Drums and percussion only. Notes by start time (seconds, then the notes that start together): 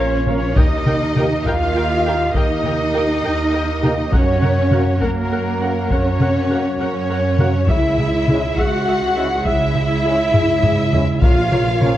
0.26 taiko mid
0.56 taiko
0.86 taiko mid
1.16 taiko mid
1.45 taiko
2.35 taiko
2.64 taiko mid
3.83 taiko mid
4.12 taiko
4.42 taiko mid
4.71 taiko mid
5.01 taiko
5.90 taiko
6.20 taiko mid
7.38 taiko mid
7.68 taiko
7.99 taiko mid
8.28 taiko mid
8.57 taiko
9.45 taiko
9.75 taiko mid
10.34 taiko low-mid
10.63 taiko low-mid
10.93 taiko low
11.22 taiko
11.52 taiko mid
11.81 taiko mid